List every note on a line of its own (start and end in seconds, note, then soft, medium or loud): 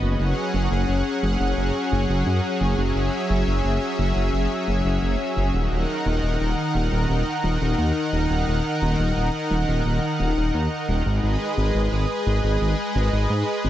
0.02 0.16 F#1 loud
0.02 5.50 F#3 medium
0.02 5.50 C#4 medium
0.02 5.50 G#4 medium
0.02 2.75 F#5 medium
0.19 0.33 F#1 medium
0.54 0.68 F#1 medium
0.71 0.85 F#1 loud
0.88 1.02 F#1 medium
1.23 1.36 F#1 medium
1.40 1.54 F#1 loud
1.57 1.71 F#1 medium
1.92 2.05 F#1 medium
2.09 2.23 F#1 loud
2.26 2.40 F#2 medium
2.61 2.74 F#1 medium
2.78 2.92 F#1 loud
2.78 5.51 E5 medium
2.95 3.09 F#1 medium
3.30 3.43 F#1 medium
3.47 3.61 F#1 loud
3.64 3.78 F#1 medium
3.99 4.12 F#1 medium
4.16 4.30 F#1 loud
4.33 4.47 F#1 medium
4.68 4.81 F#1 medium
4.85 4.99 F#1 loud
5.02 5.16 F#1 medium
5.37 5.50 F#1 medium
5.54 5.67 D#1 loud
5.54 11.02 D#3 medium
5.54 11.02 D#4 medium
5.54 11.02 A#4 medium
5.54 11.01 F#5 medium
5.71 5.85 D#1 medium
6.06 6.19 D#1 medium
6.23 6.36 D#1 loud
6.40 6.54 D#1 medium
6.75 6.88 D#1 medium
6.92 7.05 D#1 loud
7.09 7.23 D#1 medium
7.44 7.57 D#1 medium
7.61 7.74 D#1 loud
7.78 7.92 D#2 medium
8.13 8.26 D#1 medium
8.30 8.43 D#1 loud
8.47 8.61 D#1 medium
8.82 8.95 D#1 medium
8.99 9.12 D#1 loud
9.16 9.30 D#1 medium
9.51 9.64 D#1 medium
9.68 9.81 D#1 loud
9.85 9.99 D#1 medium
10.20 10.33 D#1 medium
10.37 10.50 D#1 loud
10.54 10.68 D#2 medium
10.88 11.02 D#1 medium
11.06 11.19 G#1 loud
11.06 13.70 G#3 medium
11.06 13.70 G#4 medium
11.06 13.70 B4 medium
11.06 13.70 D#5 medium
11.23 11.37 G#1 medium
11.57 11.71 G#1 medium
11.74 11.88 G#1 loud
11.92 12.05 G#1 medium
12.26 12.40 G#1 medium
12.44 12.57 G#1 loud
12.61 12.75 G#1 medium
12.95 13.09 G#1 medium
13.13 13.26 G#1 loud
13.30 13.43 G#2 medium
13.64 13.70 G#1 medium